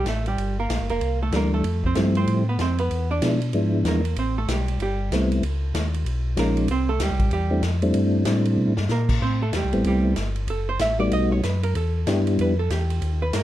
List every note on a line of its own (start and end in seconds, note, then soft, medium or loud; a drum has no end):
0.05 0.36 A1 medium
0.05 0.26 A3 medium
0.05 0.26 A4 medium
0.05 snare medium
0.05 hi-hat pedal soft
0.05 ride medium
0.26 0.56 G3 medium
0.26 0.56 G4 medium
0.26 ride soft
0.38 0.68 G1 medium
0.38 ride medium
0.59 0.89 A#3 medium
0.59 0.89 A#4 medium
0.69 0.79 A#1 medium
0.69 snare medium
0.69 hi-hat pedal medium
0.69 ride medium
0.80 0.91 G1 medium
0.89 1.00 F1 medium
0.89 1.19 A#3 medium
0.89 1.19 A#4 medium
0.89 ride soft
1.01 1.31 C2 medium
1.01 ride medium
1.22 1.33 A3 medium
1.22 1.33 A4 medium
1.32 1.63 D2 medium
1.32 1.64 E3 medium
1.32 1.65 G3 medium
1.32 1.64 A3 medium
1.32 1.65 D4 medium
1.32 snare medium
1.32 hi-hat pedal soft
1.32 ride medium
1.36 1.53 A#3 medium
1.36 1.53 A#4 medium
1.54 1.83 A3 medium
1.54 1.82 A4 medium
1.64 1.95 F2 medium
1.64 ride medium
1.84 2.16 C4 medium
1.84 2.16 C5 medium
1.84 kick medium
1.95 2.27 G2 medium
1.95 2.43 F3 medium
1.95 2.44 G3 medium
1.95 2.43 A3 medium
1.95 2.44 C4 medium
1.95 2.44 E4 medium
1.95 snare medium
1.95 hi-hat pedal soft
1.95 ride medium
2.15 2.46 C4 medium
2.15 2.46 C5 medium
2.15 ride soft
2.27 2.58 A2 medium
2.27 ride medium
2.49 2.60 B3 medium
2.49 2.60 B4 medium
2.59 2.90 F2 medium
2.59 2.79 C4 medium
2.59 2.79 C5 medium
2.59 snare medium
2.59 hi-hat pedal soft
2.59 ride medium
2.78 3.09 B3 medium
2.78 3.08 B4 medium
2.78 ride soft
2.91 3.22 E2 medium
2.91 ride medium
3.11 3.51 D4 medium
3.11 3.51 D5 medium
3.22 3.53 B2 medium
3.22 3.40 F3 medium
3.22 3.40 G#3 medium
3.22 3.40 B3 medium
3.22 3.40 D4 medium
3.22 3.40 E4 medium
3.22 snare medium
3.22 hi-hat pedal medium
3.22 ride medium
3.42 ride soft
3.53 3.84 G#2 medium
3.53 4.01 F3 medium
3.53 4.01 G#3 medium
3.53 4.01 B3 medium
3.53 4.01 D4 medium
3.53 4.02 E4 medium
3.53 ride medium
3.84 4.15 E2 medium
3.84 4.16 A#4 medium
3.84 snare medium
3.84 hi-hat pedal medium
3.84 ride medium
3.88 4.16 A#3 medium
4.05 ride soft
4.16 4.47 A1 medium
4.16 4.37 C4 medium
4.16 4.37 C5 medium
4.16 ride medium
4.38 4.49 A3 medium
4.38 4.49 A4 medium
4.47 4.78 B1 medium
4.47 4.79 G3 soft
4.47 4.79 G4 medium
4.47 snare medium
4.47 hi-hat pedal medium
4.47 ride medium
4.68 ride soft
4.79 5.10 G1 medium
4.79 5.10 G3 medium
4.79 5.10 G4 medium
4.79 ride medium
5.11 5.42 C2 medium
5.11 5.43 G3 medium
5.11 5.43 A3 medium
5.11 5.43 B3 medium
5.11 5.43 C4 medium
5.11 5.44 E4 medium
5.11 snare medium
5.11 hi-hat pedal medium
5.11 ride medium
5.32 ride medium
5.42 5.73 C#2 medium
5.42 ride medium
5.74 6.05 D#2 medium
5.74 snare medium
5.74 hi-hat pedal medium
5.74 ride medium
5.94 ride soft
6.05 6.36 B1 medium
6.05 ride medium
6.37 6.68 A#1 medium
6.37 6.68 F3 medium
6.37 6.69 G#3 medium
6.37 6.68 A#3 medium
6.37 6.69 C#4 medium
6.37 6.69 D#4 medium
6.37 6.68 A#4 medium
6.37 snare medium
6.37 hi-hat pedal soft
6.37 ride medium
6.57 ride medium
6.68 6.99 C2 medium
6.68 6.89 C4 medium
6.68 6.89 C5 medium
6.68 ride medium
6.89 7.00 A3 medium
6.89 7.00 A4 medium
6.99 7.10 D2 medium
6.99 7.31 G3 medium
6.99 7.31 G4 medium
6.99 snare medium
6.99 hi-hat pedal medium
6.99 ride medium
7.10 7.21 C2 medium
7.19 7.31 A1 medium
7.19 kick medium
7.19 ride soft
7.31 7.62 E2 medium
7.31 7.62 G3 medium
7.31 7.62 G4 medium
7.31 ride medium
7.51 7.62 G3 medium
7.51 7.62 A3 medium
7.51 7.62 C4 medium
7.51 7.62 D4 medium
7.51 7.62 E4 medium
7.62 7.93 F2 loud
7.62 snare medium
7.62 hi-hat pedal soft
7.62 ride medium
7.82 8.24 G3 medium
7.82 8.24 A3 medium
7.82 8.24 C4 medium
7.82 8.24 D4 medium
7.82 8.24 E4 medium
7.82 ride medium
7.94 8.26 G2 medium
7.94 ride medium
8.25 8.57 A2 medium
8.25 8.73 G3 medium
8.25 8.74 A3 medium
8.25 8.74 C4 medium
8.25 8.74 D4 medium
8.25 8.74 E4 medium
8.25 snare medium
8.25 hi-hat pedal medium
8.25 ride medium
8.45 ride soft
8.58 8.68 B2 medium
8.68 8.79 A2 medium
8.77 8.88 G2 medium
8.77 snare medium
8.89 9.20 A#2 loud
8.89 9.20 A#3 medium
8.89 9.20 A#4 medium
8.89 snare medium
8.89 hi-hat pedal soft
9.09 kick medium
9.09 crash medium
9.21 9.52 A2 medium
9.21 9.41 C4 medium
9.21 9.41 C5 medium
9.42 9.53 A3 medium
9.42 9.53 A4 medium
9.53 9.64 E2 medium
9.53 9.84 G3 medium
9.53 9.84 G4 medium
9.53 snare medium
9.53 hi-hat pedal medium
9.53 ride medium
9.64 9.75 C2 medium
9.73 9.84 A1 medium
9.73 10.14 G3 medium
9.73 10.14 A3 medium
9.73 10.14 B3 medium
9.73 10.15 C4 medium
9.73 10.14 E4 medium
9.73 ride soft
9.84 10.16 C2 medium
9.84 10.16 G3 medium
9.84 10.15 G4 medium
9.84 ride medium
10.16 10.47 G1 medium
10.16 snare medium
10.16 hi-hat pedal soft
10.16 ride medium
10.36 ride soft
10.47 10.79 F#1 medium
10.47 10.68 A4 medium
10.47 ride medium
10.69 10.80 C5 medium
10.79 11.10 A1 medium
10.79 10.99 E5 medium
10.79 snare medium
10.79 hi-hat pedal medium
10.79 ride medium
10.99 11.41 G3 medium
10.99 11.41 A3 medium
10.99 11.41 B3 medium
10.99 11.41 D#4 medium
10.99 11.41 F#4 medium
10.99 11.11 D5 loud
11.11 11.42 B1 medium
11.11 11.32 D#5 loud
11.11 ride medium
11.32 11.43 C#5 medium
11.43 11.74 F#2 medium
11.43 11.63 B4 medium
11.43 snare medium
11.43 hi-hat pedal medium
11.43 ride medium
11.63 11.75 A#4 medium
11.63 ride medium
11.75 12.06 E2 medium
11.75 12.05 A4 medium
11.75 ride medium
12.07 12.38 G2 medium
12.07 12.55 G3 medium
12.07 12.55 B3 medium
12.07 12.55 D4 medium
12.07 12.55 E4 medium
12.07 12.55 G4 medium
12.07 snare medium
12.07 hi-hat pedal medium
12.07 ride medium
12.27 ride medium
12.39 12.70 F2 medium
12.39 12.59 B4 medium
12.39 ride medium
12.59 12.70 A4 medium
12.70 13.01 E2 loud
12.70 13.19 G4 medium
12.70 snare medium
12.70 hi-hat pedal soft
12.70 ride medium
12.90 ride medium
13.02 13.32 D#2 medium
13.02 ride medium
13.22 13.33 B4 loud
13.33 13.43 G2 medium
13.33 13.43 A#4 medium
13.33 snare medium
13.33 hi-hat pedal medium
13.33 ride medium